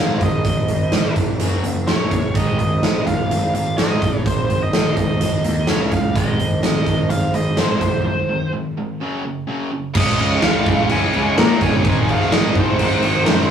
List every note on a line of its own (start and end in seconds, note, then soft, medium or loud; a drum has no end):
0.00 0.20 G#1 medium
0.00 0.19 G#2 medium
0.00 0.20 D#3 medium
0.00 0.20 G#3 medium
0.00 0.22 F5 medium
0.20 0.44 G#1 medium
0.20 0.42 G#2 medium
0.20 0.43 D#3 medium
0.20 1.13 D#5 medium
0.20 kick medium
0.20 closed hi-hat medium
0.44 0.68 G#1 medium
0.44 0.67 G#2 medium
0.44 0.67 D#3 medium
0.44 kick loud
0.44 closed hi-hat medium
0.68 0.92 G#1 medium
0.68 0.91 G#2 medium
0.68 0.91 D#3 medium
0.68 closed hi-hat medium
0.92 1.15 G#1 medium
0.92 1.14 G#2 medium
0.92 1.15 D#3 medium
0.92 snare loud
0.92 closed hi-hat medium
1.16 1.39 G#1 medium
1.16 1.39 G#2 medium
1.16 1.39 D#3 medium
1.16 kick medium
1.16 closed hi-hat medium
1.39 1.64 F#1 medium
1.39 1.63 F#2 medium
1.39 1.64 C#3 medium
1.39 1.64 F#3 medium
1.39 closed hi-hat medium
1.64 1.87 F#1 medium
1.64 1.86 F#2 medium
1.64 1.86 C#3 medium
1.64 closed hi-hat medium
1.87 2.11 F#1 medium
1.87 2.10 F#2 medium
1.87 2.11 C#3 medium
1.87 2.11 F#3 medium
1.87 2.37 C#5 medium
1.87 snare medium
1.87 closed hi-hat medium
2.11 2.35 F#1 medium
2.11 2.34 F#2 medium
2.11 2.34 C#3 medium
2.11 kick medium
2.11 closed hi-hat medium
2.35 2.58 G#1 medium
2.35 2.59 G#2 medium
2.35 2.59 D#3 medium
2.35 2.59 G#3 medium
2.35 2.58 D#5 medium
2.35 kick loud
2.35 closed hi-hat medium
2.59 2.82 G#1 medium
2.59 2.81 G#2 medium
2.59 2.81 D#3 medium
2.59 3.06 D#5 medium
2.59 closed hi-hat medium
2.83 3.06 G#1 medium
2.83 3.05 G#2 medium
2.83 3.05 D#3 medium
2.83 snare loud
2.83 closed hi-hat medium
3.07 3.30 G#1 medium
3.07 3.29 G#2 medium
3.07 3.29 D#3 medium
3.07 3.53 F5 loud
3.07 kick medium
3.07 closed hi-hat medium
3.31 3.54 G#1 medium
3.31 3.53 G#2 medium
3.31 3.53 D#3 medium
3.31 closed hi-hat medium
3.54 3.77 G#1 medium
3.54 3.76 G#2 medium
3.54 3.76 D#3 medium
3.54 3.77 F5 medium
3.54 closed hi-hat medium
3.78 4.01 G#1 medium
3.78 4.01 G#2 medium
3.78 4.01 D#3 medium
3.78 4.01 G#3 loud
3.78 4.27 D#5 medium
3.78 snare medium
3.78 closed hi-hat medium
3.90 snare soft
4.02 4.25 G#1 medium
4.02 4.24 G#2 medium
4.02 4.24 D#3 medium
4.02 kick medium
4.02 closed hi-hat medium
4.26 4.49 G#1 medium
4.26 4.47 G#2 medium
4.26 4.47 D#3 medium
4.26 4.59 C5 medium
4.26 kick loud
4.26 closed hi-hat medium
4.49 4.72 G#1 medium
4.49 4.71 G#2 medium
4.49 4.71 D#3 medium
4.49 closed hi-hat medium
4.63 4.95 D#5 medium
4.73 4.96 G#1 medium
4.73 4.95 G#2 medium
4.73 4.95 D#3 medium
4.73 snare loud
4.73 closed hi-hat medium
4.96 5.20 G#1 medium
4.96 5.19 G#2 medium
4.96 5.19 D#3 medium
4.96 5.70 D#5 loud
4.96 kick medium
4.96 closed hi-hat medium
5.21 5.44 G#1 medium
5.21 5.43 G#2 medium
5.21 5.43 D#3 medium
5.21 closed hi-hat medium
5.44 5.67 D#2 medium
5.44 5.66 G#2 medium
5.44 5.66 D#3 medium
5.44 closed hi-hat medium
5.67 5.91 C#2 medium
5.67 5.90 C#3 medium
5.67 5.91 G#3 medium
5.67 5.91 C#4 medium
5.67 5.93 C#5 medium
5.67 snare loud
5.67 closed hi-hat medium
5.80 snare soft
5.91 6.15 C#2 medium
5.91 6.13 C#3 medium
5.91 6.13 G#3 medium
5.91 6.17 F5 loud
5.91 kick medium
5.91 closed hi-hat medium
6.16 6.38 G#1 medium
6.16 6.38 G#2 medium
6.16 6.39 D#3 medium
6.16 6.39 G#3 medium
6.16 6.62 D#5 medium
6.16 kick loud
6.16 closed hi-hat medium
6.39 6.62 G#1 medium
6.39 6.61 G#2 medium
6.39 6.62 D#3 medium
6.39 closed hi-hat medium
6.63 6.86 G#1 medium
6.63 6.85 G#2 medium
6.63 6.85 D#3 medium
6.63 7.10 D#5 medium
6.63 snare loud
6.63 closed hi-hat medium
6.86 7.10 G#1 medium
6.86 7.08 G#2 medium
6.86 7.09 D#3 medium
6.86 kick medium
6.86 closed hi-hat medium
7.10 7.33 G#1 medium
7.10 7.32 G#2 medium
7.10 7.32 D#3 medium
7.10 7.34 F5 loud
7.10 closed hi-hat medium
7.34 7.57 G#1 medium
7.34 7.56 G#2 medium
7.34 7.56 D#3 medium
7.34 7.57 D#5 medium
7.34 closed hi-hat medium
7.57 7.81 G#1 medium
7.57 7.80 G#2 medium
7.57 7.80 D#3 medium
7.57 7.81 G#3 medium
7.57 8.06 C5 medium
7.57 snare medium
7.57 closed hi-hat medium
7.69 snare soft
7.81 8.04 F1 medium
7.81 8.03 G#2 medium
7.81 8.03 D#3 medium
7.81 kick medium
7.81 closed hi-hat medium
8.05 8.26 G#2 medium
8.05 8.26 D#3 medium
8.05 8.50 C5 medium
8.29 8.50 G#2 medium
8.29 8.51 D#3 medium
8.52 8.74 G#2 medium
8.52 8.74 D#3 medium
8.78 8.98 G#2 medium
8.78 8.99 D#3 medium
9.01 9.23 F#2 medium
9.01 9.23 C#3 medium
9.01 9.23 F#3 medium
9.24 9.45 F#2 medium
9.24 9.46 C#3 medium
9.47 9.70 F#2 medium
9.47 9.70 C#3 medium
9.47 9.70 F#3 medium
9.71 9.93 F#2 medium
9.71 9.93 C#3 medium
9.95 10.11 C#2 medium
9.95 10.18 C#3 medium
9.95 10.19 G#3 loud
9.95 10.19 C#4 loud
9.95 11.83 C#4 medium
9.95 11.83 G#4 medium
9.95 10.40 D#5 medium
9.95 11.83 D#5 medium
9.95 kick loud
9.95 crash loud
9.95 crash medium
10.19 10.36 C#2 medium
10.19 10.41 C#3 medium
10.19 10.43 G#3 medium
10.19 10.42 C#4 medium
10.19 crash medium
10.31 snare soft
10.42 10.75 C#2 medium
10.42 10.64 C#3 medium
10.42 10.66 G#3 medium
10.42 10.65 C#4 medium
10.42 10.87 F5 medium
10.42 snare loud
10.42 crash medium
10.66 10.89 C#3 medium
10.66 10.90 G#3 loud
10.66 10.89 C#4 loud
10.66 kick medium
10.66 crash medium
10.89 11.06 C#2 medium
10.89 11.12 C#3 medium
10.89 11.13 G#3 medium
10.89 11.12 C#4 loud
10.89 11.35 G#5 loud
10.89 crash medium
11.13 11.30 C#2 medium
11.13 11.36 C#3 medium
11.13 11.37 G#3 medium
11.13 11.37 C#4 medium
11.13 crash medium
11.37 11.54 A#2 medium
11.37 11.59 C#3 loud
11.37 11.61 G#3 loud
11.37 11.61 C#4 loud
11.37 11.62 A#5 loud
11.37 snare loud
11.37 crash medium
11.61 11.85 G1 medium
11.61 11.83 C#3 medium
11.61 11.85 G#3 medium
11.61 11.83 C#4 medium
11.61 12.10 G#5 loud
11.61 kick medium
11.61 crash medium
11.85 12.00 G#1 medium
11.85 12.08 G#2 medium
11.85 12.09 D#3 loud
11.85 13.51 G#3 medium
11.85 12.10 G#3 loud
11.85 13.51 D#4 medium
11.85 13.51 A#4 medium
11.85 kick loud
11.85 crash medium
12.09 12.25 G#1 medium
12.09 12.30 G#2 medium
12.09 12.31 D#3 medium
12.09 12.32 G#3 medium
12.09 12.33 F5 medium
12.09 crash medium
12.21 snare soft
12.32 12.64 G#1 medium
12.32 12.54 G#2 medium
12.32 12.55 D#3 medium
12.32 12.56 G#3 loud
12.32 12.57 D#5 medium
12.32 snare loud
12.32 crash medium
12.55 12.77 G#2 medium
12.55 12.78 D#3 loud
12.55 12.79 G#3 loud
12.55 kick medium
12.55 crash medium
12.60 13.48 C5 medium
12.79 12.96 G#1 medium
12.79 13.01 G#2 medium
12.79 13.02 D#3 medium
12.79 13.03 G#3 medium
12.79 crash medium
13.02 13.19 G#1 medium
13.02 13.25 G#2 medium
13.02 13.26 D#3 medium
13.02 13.27 G#3 medium
13.02 crash medium
13.26 13.43 F#2 medium
13.26 13.48 G#2 medium
13.26 13.49 D#3 loud
13.26 13.50 G#3 loud
13.26 snare loud
13.26 crash medium